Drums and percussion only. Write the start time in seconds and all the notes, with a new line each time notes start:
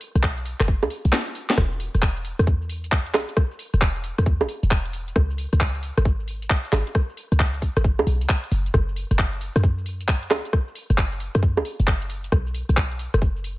0.01 open hi-hat
0.15 cross-stick, closed hi-hat, cabasa
0.23 kick, clap, cabasa
0.38 closed hi-hat, cabasa
0.46 open hi-hat
0.60 cross-stick, clap, closed hi-hat, cabasa
0.68 kick, cabasa
0.83 closed hi-hat, high bongo, cabasa
0.90 open hi-hat
1.05 closed hi-hat, cabasa
1.13 snare, clap, cabasa
1.27 cabasa
1.35 open hi-hat
1.50 snare, closed hi-hat, cabasa
1.58 kick, cross-stick, cabasa
1.72 cabasa
1.80 open hi-hat
1.95 cross-stick, closed hi-hat, cabasa
2.02 kick, clap, cabasa
2.17 closed hi-hat, cabasa
2.25 open hi-hat
2.39 cross-stick, closed hi-hat, cabasa
2.47 kick, cabasa
2.62 cabasa
2.69 open hi-hat
2.84 closed hi-hat, cabasa
2.92 kick, clap, cabasa
3.07 closed hi-hat, cabasa
3.14 clap, open hi-hat, high bongo
3.29 closed hi-hat, cabasa
3.37 kick, cross-stick, cabasa
3.51 cabasa
3.59 open hi-hat
3.74 cross-stick, closed hi-hat, cabasa
3.81 kick, clap, cabasa
3.96 closed hi-hat, cabasa
4.04 open hi-hat
4.18 cross-stick, closed hi-hat, cabasa
4.26 kick, cabasa
4.41 high bongo, cabasa
4.49 open hi-hat
4.63 closed hi-hat, cabasa
4.71 kick, clap, cabasa
4.86 closed hi-hat, cabasa
4.93 open hi-hat
5.08 closed hi-hat, cabasa
5.16 kick, cross-stick, cabasa
5.30 cabasa
5.38 open hi-hat
5.53 cross-stick, closed hi-hat, cabasa
5.60 kick, clap, cabasa
5.75 closed hi-hat, cabasa
5.83 open hi-hat
5.98 cross-stick, closed hi-hat, cabasa
6.05 kick, cabasa
6.20 cabasa
6.28 open hi-hat
6.42 closed hi-hat, cabasa
6.50 kick, clap, cabasa
6.65 closed hi-hat, cabasa
6.73 clap, open hi-hat, high bongo
6.87 closed hi-hat, cabasa
6.95 kick, cross-stick, cabasa
7.10 cabasa
7.17 open hi-hat
7.32 cross-stick, closed hi-hat, cabasa
7.40 kick, clap, cabasa
7.54 closed hi-hat, cabasa
7.62 kick, open hi-hat
7.77 cross-stick, closed hi-hat, cabasa
7.84 kick, cabasa
7.99 high bongo, cabasa
8.07 open hi-hat
8.21 closed hi-hat, cabasa
8.29 kick, clap, cabasa
8.44 closed hi-hat, cabasa
8.52 open hi-hat
8.66 closed hi-hat, cabasa
8.74 kick, cross-stick, cabasa
8.89 cabasa
8.96 open hi-hat
9.11 cross-stick, closed hi-hat, cabasa
9.19 kick, clap, cabasa
9.33 closed hi-hat, cabasa
9.41 open hi-hat
9.56 cross-stick, closed hi-hat, cabasa
9.64 kick, cabasa
9.78 cabasa
9.86 open hi-hat
10.01 closed hi-hat, cabasa
10.08 kick, clap, cabasa
10.23 closed hi-hat, cabasa
10.31 clap, open hi-hat, high bongo
10.45 closed hi-hat, cabasa
10.53 kick, cross-stick, cabasa
10.68 cabasa
10.75 open hi-hat
10.90 cross-stick, closed hi-hat, cabasa
10.98 kick, clap, cabasa
11.12 closed hi-hat, cabasa
11.20 open hi-hat
11.35 cross-stick, closed hi-hat, cabasa
11.43 kick, cabasa
11.57 high bongo, cabasa
11.65 open hi-hat
11.80 closed hi-hat, cabasa
11.87 kick, clap, cabasa
12.02 closed hi-hat, cabasa
12.10 open hi-hat
12.24 closed hi-hat, cabasa
12.32 kick, cross-stick, cabasa
12.47 cabasa
12.54 open hi-hat
12.69 cross-stick, closed hi-hat, cabasa
12.77 kick, clap, cabasa
12.92 closed hi-hat, cabasa
12.99 open hi-hat
13.14 cross-stick, closed hi-hat, cabasa
13.22 kick, cabasa
13.36 cabasa
13.44 open hi-hat